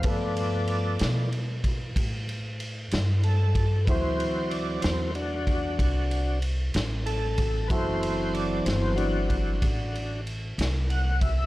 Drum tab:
RD |xxxxxxxxxxxx|xxxxxxxxxxxx|xxxxxxxxxxxx|
SD |---o-----o--|---o-----o--|---o-----o--|
BD |o----oo----o|o----oo----o|o----oo----o|